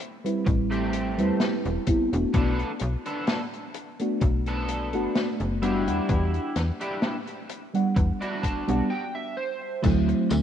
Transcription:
0.00 muted clean electric guitar stroke, closed hi-hat
0.25 fm electric piano G3 C4 E4 B4, closed hi-hat
0.46 fm bass A1, muted clean electric guitar stroke, kick, closed hi-hat
0.71 clean electric guitar A3 C4 G4, closed hi-hat
0.93 closed hi-hat
1.18 fm bass E2, fm electric piano G3 C4 E4 B4, closed hi-hat
1.40 snare, closed hi-hat
1.65 fm bass E1, closed hi-hat
1.87 fm electric piano G3 B3 C4 E4, kick, closed hi-hat
2.12 fm bass E1, fm electric piano A3 B3 D4 F#4, closed hi-hat
2.33 fm bass B1, clean electric guitar B3 D4 A4, kick, closed hi-hat
2.59 closed hi-hat
2.79 fm bass B1, closed hi-hat
3.06 clean electric guitar B3 D4 A4, closed hi-hat
3.27 snare, closed hi-hat
3.53 closed hi-hat
3.74 muted clean electric guitar stroke, closed hi-hat
3.99 fm electric piano A3 B3 D4 F#4, closed hi-hat
4.21 fm bass B1, muted clean electric guitar stroke, kick, closed hi-hat
4.46 clean electric guitar B3 D4 A4, closed hi-hat
4.68 closed hi-hat
4.93 fm bass F#1, fm electric piano A3 B3 D4 F#4, closed hi-hat
5.15 snare, closed hi-hat
5.40 fm bass F#1, closed hi-hat
5.62 fm electric piano G3 B3 D4 F#4, clean electric guitar D4 E4 G4, closed hi-hat
5.86 fm bass E2, fm electric piano G3 B3 D4 F#5, closed hi-hat
6.09 fm bass E2, kick, closed hi-hat
6.34 closed hi-hat
6.56 fm bass E2, snare, closed hi-hat
6.80 clean electric guitar D4 E4 G4, closed hi-hat
7.02 snare, closed hi-hat
7.27 closed hi-hat
7.49 muted clean electric guitar stroke, closed hi-hat
7.74 fm electric piano G3 B3 D4 F#5, closed hi-hat
7.96 fm bass E2, muted clean electric guitar stroke, kick, closed hi-hat
8.21 clean electric guitar D4 E4 F#4, closed hi-hat
8.43 clean electric guitar A5, kick, closed hi-hat
8.67 fm bass B1, fm electric piano G3 B3 D4 F#4, closed hi-hat
8.90 clean electric guitar G5
9.15 clean electric guitar E5
9.37 clean electric guitar C5
9.82 fm bass D2, fm electric piano F#3 A3 C4 E4, muted clean electric guitar stroke, kick, closed hi-hat, crash, tambourine
10.08 muted clean electric guitar stroke, closed hi-hat
10.30 fm bass D2, muted clean electric guitar stroke, closed hi-hat, tambourine

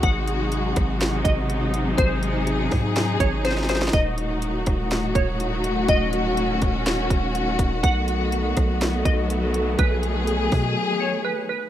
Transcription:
Already playing: string section G#3 F#4
0.03 808-style bass G#1, string section C3 F#3 D#4, synth pluck F#5, kick, closed hi-hat
0.28 closed hi-hat
0.52 closed hi-hat
0.76 808-style bass G#1, kick, cross-stick, closed hi-hat
1.01 snare, closed hi-hat
1.25 808-style bass G#1, synth pluck D#5, kick, closed hi-hat
1.50 closed hi-hat
1.74 closed hi-hat
1.98 808-style bass G#1, string section G#4, synth pluck C5, kick, closed hi-hat
2.23 closed hi-hat
2.47 closed hi-hat
2.71 808-style bass G#2, kick, cross-stick, open hi-hat
2.96 snare, closed hi-hat
3.20 808-style bass G#1, synth pluck C#5, kick, closed hi-hat
3.45 synth pluck C5, snare, closed hi-hat
3.51 snare
3.57 snare
3.63 snare
3.69 synth pluck C5, snare, closed hi-hat
3.76 snare
3.82 snare
3.88 snare
3.93 808-style bass D#1, string section A2 D#3 F#3 F#4, synth pluck D#5, kick, closed hi-hat
4.18 closed hi-hat
4.42 closed hi-hat
4.66 808-style bass D#1, kick, cross-stick, closed hi-hat
4.91 snare, closed hi-hat
5.15 808-style bass D#1, synth pluck C#5, kick, closed hi-hat
5.40 closed hi-hat
5.64 closed hi-hat
5.88 808-style bass D#1, string section C#4, synth pluck D#5, kick, closed hi-hat
6.13 closed hi-hat
6.37 closed hi-hat
6.62 808-style bass D#1, kick, closed hi-hat
6.86 snare, closed hi-hat
7.10 808-style bass D#1, kick, closed hi-hat
7.35 closed hi-hat
7.59 808-style bass D#1, kick, closed hi-hat
7.83 808-style bass B1, string section F#3 A3 B3, synth pluck F#5, kick, closed hi-hat
8.08 closed hi-hat
8.32 closed hi-hat
8.57 808-style bass B1, kick, cross-stick, closed hi-hat
8.81 snare, closed hi-hat
9.05 808-style bass B1, synth pluck D#5, kick, closed hi-hat
9.30 closed hi-hat
9.54 closed hi-hat
9.79 808-style bass B1, string section G#4, synth pluck B4, kick, closed hi-hat
10.03 closed hi-hat
10.27 closed hi-hat
10.52 808-style bass B2, kick, cross-stick, open hi-hat
11.00 synth pluck C#5
11.25 synth pluck B4
11.49 synth pluck B4

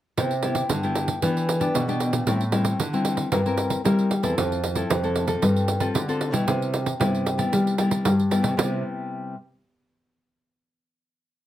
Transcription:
0.17 nylon-string guitar C3 B3 E4 G4, pandeiro
0.31 pandeiro
0.43 nylon-string guitar B3 E4 G4, pandeiro
0.55 pandeiro
0.69 nylon-string guitar G2 D3, pandeiro
0.83 nylon-string guitar B3 E4 G4, pandeiro
0.95 pandeiro
1.08 pandeiro
1.22 nylon-string guitar E3 B3 D4 G4, pandeiro
1.37 pandeiro
1.49 pandeiro
1.60 nylon-string guitar B3 D4 G4, pandeiro
1.74 nylon-string guitar B2, pandeiro
1.88 nylon-string guitar B3 D4 G4, pandeiro
2.00 pandeiro
2.13 nylon-string guitar A#2, pandeiro
2.26 nylon-string guitar A2 G3 C4 E4, pandeiro
2.41 pandeiro
2.52 nylon-string guitar G3 C4 E4, pandeiro
2.65 pandeiro
2.80 nylon-string guitar D3 E3, pandeiro
2.93 nylon-string guitar G3 C4 E4, pandeiro
3.05 pandeiro
3.17 pandeiro
3.32 nylon-string guitar G2 G3 C4 E4 A#4, pandeiro
3.46 nylon-string guitar C4 E4 A#4, pandeiro
3.57 pandeiro
3.70 pandeiro
3.84 nylon-string guitar G3 C4 E4 A#4, pandeiro
3.99 pandeiro
4.11 pandeiro
4.23 nylon-string guitar E2 C4 E4 A4, pandeiro
4.37 nylon-string guitar F2 F3, pandeiro
4.52 pandeiro
4.64 pandeiro
4.75 nylon-string guitar C4 E4 A4, pandeiro
4.90 nylon-string guitar F2 C3, pandeiro
5.03 nylon-string guitar C4 E4 A4, pandeiro
5.16 pandeiro
5.27 nylon-string guitar C4 F4 A4, pandeiro
5.42 nylon-string guitar G2 G3, pandeiro
5.56 pandeiro
5.68 pandeiro
5.80 nylon-string guitar C4 F4 A4, pandeiro
5.94 nylon-string guitar D3, pandeiro
6.08 nylon-string guitar C4 F4 A4, pandeiro
6.21 pandeiro
6.32 nylon-string guitar B2 G3 B3 E4, pandeiro
6.47 nylon-string guitar C3, pandeiro
6.62 pandeiro
6.74 pandeiro
6.86 pandeiro
7.00 nylon-string guitar G2 C3 G3 B3 E4, pandeiro
7.15 pandeiro
7.26 pandeiro
7.38 nylon-string guitar G3 B3 E4, pandeiro
7.52 nylon-string guitar C3 G3, pandeiro
7.67 pandeiro
7.78 nylon-string guitar G3 B3 E4, pandeiro
7.91 pandeiro
8.05 nylon-string guitar G2 G3, pandeiro
8.20 pandeiro
8.31 nylon-string guitar G3 B3 E4, pandeiro
8.42 nylon-string guitar C3, pandeiro
8.57 nylon-string guitar C3 G3 B3 E4, pandeiro

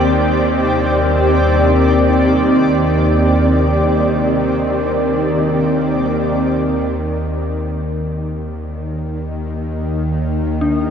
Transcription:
Already playing: synth drone D#2 D#3, ambient pad C4 G4 D5
7.01 synth drone D#2 D#3, ambient pad D#3
8.33 ambient pad A#4
10.26 ambient pad F5
10.61 synth bell D4

